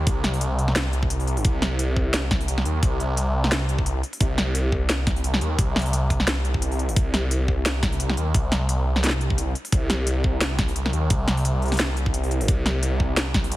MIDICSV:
0, 0, Header, 1, 3, 480
1, 0, Start_track
1, 0, Key_signature, -3, "minor"
1, 0, Tempo, 344828
1, 96, Time_signature, 4, 2, 24, 8
1, 18884, End_track
2, 0, Start_track
2, 0, Title_t, "Detuned saw bass"
2, 0, Program_c, 0, 39
2, 95, Note_on_c, 0, 36, 97
2, 1908, Note_on_c, 0, 31, 86
2, 1929, Note_off_c, 0, 36, 0
2, 2007, Note_off_c, 0, 31, 0
2, 2014, Note_on_c, 0, 36, 100
2, 3682, Note_off_c, 0, 36, 0
2, 3694, Note_on_c, 0, 39, 93
2, 3918, Note_off_c, 0, 39, 0
2, 3936, Note_on_c, 0, 36, 101
2, 5603, Note_off_c, 0, 36, 0
2, 5854, Note_on_c, 0, 36, 99
2, 7522, Note_off_c, 0, 36, 0
2, 7536, Note_on_c, 0, 39, 94
2, 7759, Note_off_c, 0, 39, 0
2, 7776, Note_on_c, 0, 36, 102
2, 9588, Note_on_c, 0, 31, 85
2, 9609, Note_off_c, 0, 36, 0
2, 9687, Note_off_c, 0, 31, 0
2, 9694, Note_on_c, 0, 36, 99
2, 11362, Note_off_c, 0, 36, 0
2, 11378, Note_on_c, 0, 39, 100
2, 11600, Note_off_c, 0, 39, 0
2, 11616, Note_on_c, 0, 36, 97
2, 13283, Note_off_c, 0, 36, 0
2, 13537, Note_on_c, 0, 36, 103
2, 15203, Note_off_c, 0, 36, 0
2, 15218, Note_on_c, 0, 39, 98
2, 15440, Note_off_c, 0, 39, 0
2, 15456, Note_on_c, 0, 36, 98
2, 17270, Note_on_c, 0, 31, 87
2, 17290, Note_off_c, 0, 36, 0
2, 17368, Note_off_c, 0, 31, 0
2, 17377, Note_on_c, 0, 36, 98
2, 18884, Note_off_c, 0, 36, 0
2, 18884, End_track
3, 0, Start_track
3, 0, Title_t, "Drums"
3, 94, Note_on_c, 9, 42, 78
3, 95, Note_on_c, 9, 36, 120
3, 233, Note_off_c, 9, 42, 0
3, 234, Note_off_c, 9, 36, 0
3, 333, Note_on_c, 9, 40, 51
3, 333, Note_on_c, 9, 42, 36
3, 468, Note_on_c, 9, 46, 35
3, 472, Note_off_c, 9, 40, 0
3, 472, Note_off_c, 9, 42, 0
3, 572, Note_on_c, 9, 42, 71
3, 607, Note_off_c, 9, 46, 0
3, 711, Note_off_c, 9, 42, 0
3, 815, Note_on_c, 9, 42, 36
3, 946, Note_on_c, 9, 40, 36
3, 954, Note_off_c, 9, 42, 0
3, 1053, Note_on_c, 9, 38, 123
3, 1053, Note_on_c, 9, 42, 77
3, 1086, Note_off_c, 9, 40, 0
3, 1192, Note_off_c, 9, 38, 0
3, 1192, Note_off_c, 9, 42, 0
3, 1295, Note_on_c, 9, 42, 38
3, 1429, Note_on_c, 9, 36, 66
3, 1434, Note_off_c, 9, 42, 0
3, 1535, Note_on_c, 9, 42, 63
3, 1568, Note_off_c, 9, 36, 0
3, 1668, Note_on_c, 9, 46, 36
3, 1674, Note_off_c, 9, 42, 0
3, 1774, Note_on_c, 9, 42, 37
3, 1807, Note_off_c, 9, 46, 0
3, 1907, Note_on_c, 9, 46, 62
3, 1914, Note_off_c, 9, 42, 0
3, 2012, Note_on_c, 9, 42, 75
3, 2015, Note_on_c, 9, 36, 120
3, 2047, Note_off_c, 9, 46, 0
3, 2151, Note_off_c, 9, 42, 0
3, 2154, Note_off_c, 9, 36, 0
3, 2255, Note_on_c, 9, 40, 52
3, 2255, Note_on_c, 9, 42, 35
3, 2394, Note_off_c, 9, 40, 0
3, 2394, Note_off_c, 9, 42, 0
3, 2493, Note_on_c, 9, 42, 67
3, 2633, Note_off_c, 9, 42, 0
3, 2735, Note_on_c, 9, 36, 64
3, 2874, Note_off_c, 9, 36, 0
3, 2974, Note_on_c, 9, 38, 121
3, 2974, Note_on_c, 9, 42, 75
3, 3113, Note_off_c, 9, 38, 0
3, 3113, Note_off_c, 9, 42, 0
3, 3215, Note_on_c, 9, 36, 108
3, 3215, Note_on_c, 9, 40, 59
3, 3215, Note_on_c, 9, 42, 37
3, 3349, Note_on_c, 9, 46, 38
3, 3354, Note_off_c, 9, 36, 0
3, 3354, Note_off_c, 9, 40, 0
3, 3354, Note_off_c, 9, 42, 0
3, 3456, Note_on_c, 9, 42, 61
3, 3488, Note_off_c, 9, 46, 0
3, 3588, Note_on_c, 9, 40, 51
3, 3595, Note_off_c, 9, 42, 0
3, 3695, Note_on_c, 9, 42, 37
3, 3727, Note_off_c, 9, 40, 0
3, 3834, Note_off_c, 9, 42, 0
3, 3935, Note_on_c, 9, 36, 116
3, 3935, Note_on_c, 9, 42, 71
3, 4075, Note_off_c, 9, 36, 0
3, 4075, Note_off_c, 9, 42, 0
3, 4178, Note_on_c, 9, 42, 37
3, 4317, Note_off_c, 9, 42, 0
3, 4417, Note_on_c, 9, 42, 69
3, 4556, Note_off_c, 9, 42, 0
3, 4790, Note_on_c, 9, 40, 39
3, 4895, Note_on_c, 9, 38, 116
3, 4895, Note_on_c, 9, 42, 76
3, 4929, Note_off_c, 9, 40, 0
3, 5034, Note_off_c, 9, 38, 0
3, 5034, Note_off_c, 9, 42, 0
3, 5135, Note_on_c, 9, 42, 36
3, 5269, Note_on_c, 9, 36, 63
3, 5274, Note_off_c, 9, 42, 0
3, 5375, Note_on_c, 9, 42, 59
3, 5408, Note_off_c, 9, 36, 0
3, 5514, Note_off_c, 9, 42, 0
3, 5615, Note_on_c, 9, 42, 37
3, 5749, Note_on_c, 9, 46, 70
3, 5755, Note_off_c, 9, 42, 0
3, 5853, Note_on_c, 9, 42, 74
3, 5855, Note_on_c, 9, 36, 118
3, 5888, Note_off_c, 9, 46, 0
3, 5993, Note_off_c, 9, 42, 0
3, 5994, Note_off_c, 9, 36, 0
3, 6095, Note_on_c, 9, 40, 56
3, 6095, Note_on_c, 9, 42, 35
3, 6234, Note_off_c, 9, 40, 0
3, 6234, Note_off_c, 9, 42, 0
3, 6332, Note_on_c, 9, 42, 67
3, 6471, Note_off_c, 9, 42, 0
3, 6576, Note_on_c, 9, 36, 58
3, 6715, Note_off_c, 9, 36, 0
3, 6813, Note_on_c, 9, 38, 112
3, 6813, Note_on_c, 9, 42, 79
3, 6953, Note_off_c, 9, 38, 0
3, 6953, Note_off_c, 9, 42, 0
3, 7055, Note_on_c, 9, 40, 63
3, 7055, Note_on_c, 9, 42, 37
3, 7056, Note_on_c, 9, 36, 101
3, 7188, Note_on_c, 9, 46, 40
3, 7194, Note_off_c, 9, 40, 0
3, 7194, Note_off_c, 9, 42, 0
3, 7195, Note_off_c, 9, 36, 0
3, 7296, Note_on_c, 9, 42, 63
3, 7327, Note_off_c, 9, 46, 0
3, 7429, Note_on_c, 9, 40, 54
3, 7436, Note_off_c, 9, 42, 0
3, 7535, Note_on_c, 9, 42, 39
3, 7568, Note_off_c, 9, 40, 0
3, 7674, Note_off_c, 9, 42, 0
3, 7775, Note_on_c, 9, 36, 118
3, 7776, Note_on_c, 9, 42, 79
3, 7914, Note_off_c, 9, 36, 0
3, 7915, Note_off_c, 9, 42, 0
3, 8017, Note_on_c, 9, 40, 57
3, 8017, Note_on_c, 9, 42, 17
3, 8061, Note_off_c, 9, 42, 0
3, 8061, Note_on_c, 9, 42, 23
3, 8096, Note_off_c, 9, 42, 0
3, 8096, Note_on_c, 9, 42, 30
3, 8151, Note_on_c, 9, 46, 39
3, 8156, Note_off_c, 9, 40, 0
3, 8235, Note_off_c, 9, 42, 0
3, 8258, Note_on_c, 9, 42, 72
3, 8290, Note_off_c, 9, 46, 0
3, 8397, Note_off_c, 9, 42, 0
3, 8494, Note_on_c, 9, 36, 61
3, 8495, Note_on_c, 9, 42, 38
3, 8628, Note_on_c, 9, 40, 39
3, 8634, Note_off_c, 9, 36, 0
3, 8634, Note_off_c, 9, 42, 0
3, 8735, Note_on_c, 9, 38, 112
3, 8735, Note_on_c, 9, 42, 80
3, 8767, Note_off_c, 9, 40, 0
3, 8874, Note_off_c, 9, 38, 0
3, 8874, Note_off_c, 9, 42, 0
3, 8975, Note_on_c, 9, 42, 38
3, 9109, Note_on_c, 9, 36, 62
3, 9114, Note_off_c, 9, 42, 0
3, 9216, Note_on_c, 9, 42, 68
3, 9248, Note_off_c, 9, 36, 0
3, 9349, Note_on_c, 9, 46, 39
3, 9355, Note_off_c, 9, 42, 0
3, 9455, Note_on_c, 9, 42, 39
3, 9488, Note_off_c, 9, 46, 0
3, 9589, Note_on_c, 9, 46, 68
3, 9594, Note_off_c, 9, 42, 0
3, 9694, Note_on_c, 9, 42, 82
3, 9695, Note_on_c, 9, 36, 118
3, 9728, Note_off_c, 9, 46, 0
3, 9833, Note_off_c, 9, 42, 0
3, 9834, Note_off_c, 9, 36, 0
3, 9935, Note_on_c, 9, 40, 54
3, 9935, Note_on_c, 9, 42, 39
3, 10074, Note_off_c, 9, 40, 0
3, 10074, Note_off_c, 9, 42, 0
3, 10177, Note_on_c, 9, 42, 73
3, 10316, Note_off_c, 9, 42, 0
3, 10416, Note_on_c, 9, 36, 62
3, 10555, Note_off_c, 9, 36, 0
3, 10658, Note_on_c, 9, 38, 122
3, 10658, Note_on_c, 9, 42, 83
3, 10797, Note_off_c, 9, 38, 0
3, 10797, Note_off_c, 9, 42, 0
3, 10895, Note_on_c, 9, 40, 63
3, 10895, Note_on_c, 9, 42, 39
3, 10896, Note_on_c, 9, 36, 111
3, 11029, Note_on_c, 9, 46, 39
3, 11034, Note_off_c, 9, 40, 0
3, 11034, Note_off_c, 9, 42, 0
3, 11035, Note_off_c, 9, 36, 0
3, 11134, Note_on_c, 9, 42, 65
3, 11169, Note_off_c, 9, 46, 0
3, 11268, Note_on_c, 9, 40, 55
3, 11273, Note_off_c, 9, 42, 0
3, 11377, Note_on_c, 9, 42, 41
3, 11408, Note_off_c, 9, 40, 0
3, 11516, Note_off_c, 9, 42, 0
3, 11615, Note_on_c, 9, 42, 86
3, 11616, Note_on_c, 9, 36, 127
3, 11754, Note_off_c, 9, 42, 0
3, 11756, Note_off_c, 9, 36, 0
3, 11856, Note_on_c, 9, 40, 55
3, 11856, Note_on_c, 9, 42, 40
3, 11995, Note_off_c, 9, 40, 0
3, 11995, Note_off_c, 9, 42, 0
3, 12096, Note_on_c, 9, 42, 73
3, 12235, Note_off_c, 9, 42, 0
3, 12471, Note_on_c, 9, 40, 39
3, 12579, Note_on_c, 9, 38, 57
3, 12579, Note_on_c, 9, 42, 83
3, 12610, Note_off_c, 9, 40, 0
3, 12623, Note_off_c, 9, 38, 0
3, 12623, Note_on_c, 9, 38, 78
3, 12659, Note_off_c, 9, 38, 0
3, 12659, Note_on_c, 9, 38, 96
3, 12718, Note_off_c, 9, 42, 0
3, 12798, Note_off_c, 9, 38, 0
3, 12818, Note_on_c, 9, 42, 39
3, 12951, Note_on_c, 9, 36, 66
3, 12958, Note_off_c, 9, 42, 0
3, 13058, Note_on_c, 9, 42, 69
3, 13090, Note_off_c, 9, 36, 0
3, 13197, Note_off_c, 9, 42, 0
3, 13298, Note_on_c, 9, 42, 40
3, 13430, Note_on_c, 9, 46, 64
3, 13437, Note_off_c, 9, 42, 0
3, 13536, Note_on_c, 9, 42, 81
3, 13537, Note_on_c, 9, 36, 127
3, 13569, Note_off_c, 9, 46, 0
3, 13675, Note_off_c, 9, 42, 0
3, 13676, Note_off_c, 9, 36, 0
3, 13776, Note_on_c, 9, 40, 51
3, 13776, Note_on_c, 9, 42, 38
3, 13915, Note_off_c, 9, 40, 0
3, 13915, Note_off_c, 9, 42, 0
3, 14014, Note_on_c, 9, 42, 73
3, 14153, Note_off_c, 9, 42, 0
3, 14257, Note_on_c, 9, 36, 66
3, 14396, Note_off_c, 9, 36, 0
3, 14493, Note_on_c, 9, 38, 127
3, 14493, Note_on_c, 9, 42, 83
3, 14633, Note_off_c, 9, 38, 0
3, 14633, Note_off_c, 9, 42, 0
3, 14735, Note_on_c, 9, 40, 60
3, 14735, Note_on_c, 9, 42, 38
3, 14736, Note_on_c, 9, 36, 116
3, 14870, Note_on_c, 9, 46, 36
3, 14874, Note_off_c, 9, 40, 0
3, 14874, Note_off_c, 9, 42, 0
3, 14875, Note_off_c, 9, 36, 0
3, 14976, Note_on_c, 9, 42, 67
3, 15009, Note_off_c, 9, 46, 0
3, 15113, Note_on_c, 9, 40, 53
3, 15115, Note_off_c, 9, 42, 0
3, 15217, Note_on_c, 9, 42, 39
3, 15252, Note_off_c, 9, 40, 0
3, 15356, Note_off_c, 9, 42, 0
3, 15454, Note_on_c, 9, 42, 79
3, 15456, Note_on_c, 9, 36, 125
3, 15593, Note_off_c, 9, 42, 0
3, 15596, Note_off_c, 9, 36, 0
3, 15696, Note_on_c, 9, 40, 52
3, 15696, Note_on_c, 9, 42, 37
3, 15832, Note_on_c, 9, 46, 35
3, 15836, Note_off_c, 9, 40, 0
3, 15836, Note_off_c, 9, 42, 0
3, 15938, Note_on_c, 9, 42, 69
3, 15971, Note_off_c, 9, 46, 0
3, 16077, Note_off_c, 9, 42, 0
3, 16178, Note_on_c, 9, 42, 16
3, 16225, Note_off_c, 9, 42, 0
3, 16225, Note_on_c, 9, 42, 19
3, 16258, Note_off_c, 9, 42, 0
3, 16258, Note_on_c, 9, 42, 22
3, 16314, Note_off_c, 9, 42, 0
3, 16314, Note_on_c, 9, 40, 37
3, 16314, Note_on_c, 9, 42, 25
3, 16339, Note_off_c, 9, 42, 0
3, 16339, Note_on_c, 9, 42, 29
3, 16384, Note_off_c, 9, 42, 0
3, 16384, Note_on_c, 9, 42, 33
3, 16419, Note_off_c, 9, 42, 0
3, 16419, Note_on_c, 9, 38, 123
3, 16419, Note_on_c, 9, 42, 81
3, 16453, Note_off_c, 9, 40, 0
3, 16558, Note_off_c, 9, 38, 0
3, 16558, Note_off_c, 9, 42, 0
3, 16659, Note_on_c, 9, 42, 37
3, 16791, Note_on_c, 9, 36, 65
3, 16798, Note_off_c, 9, 42, 0
3, 16898, Note_on_c, 9, 42, 64
3, 16930, Note_off_c, 9, 36, 0
3, 17032, Note_on_c, 9, 46, 35
3, 17037, Note_off_c, 9, 42, 0
3, 17138, Note_on_c, 9, 42, 38
3, 17171, Note_off_c, 9, 46, 0
3, 17272, Note_on_c, 9, 46, 64
3, 17277, Note_off_c, 9, 42, 0
3, 17377, Note_on_c, 9, 36, 120
3, 17377, Note_on_c, 9, 42, 77
3, 17411, Note_off_c, 9, 46, 0
3, 17516, Note_off_c, 9, 42, 0
3, 17517, Note_off_c, 9, 36, 0
3, 17619, Note_on_c, 9, 40, 50
3, 17619, Note_on_c, 9, 42, 35
3, 17758, Note_off_c, 9, 40, 0
3, 17758, Note_off_c, 9, 42, 0
3, 17856, Note_on_c, 9, 42, 66
3, 17995, Note_off_c, 9, 42, 0
3, 18096, Note_on_c, 9, 36, 62
3, 18235, Note_off_c, 9, 36, 0
3, 18334, Note_on_c, 9, 38, 119
3, 18334, Note_on_c, 9, 42, 78
3, 18473, Note_off_c, 9, 38, 0
3, 18473, Note_off_c, 9, 42, 0
3, 18575, Note_on_c, 9, 36, 110
3, 18576, Note_on_c, 9, 40, 61
3, 18576, Note_on_c, 9, 42, 36
3, 18710, Note_on_c, 9, 46, 38
3, 18714, Note_off_c, 9, 36, 0
3, 18715, Note_off_c, 9, 40, 0
3, 18715, Note_off_c, 9, 42, 0
3, 18815, Note_on_c, 9, 42, 62
3, 18850, Note_off_c, 9, 46, 0
3, 18884, Note_off_c, 9, 42, 0
3, 18884, End_track
0, 0, End_of_file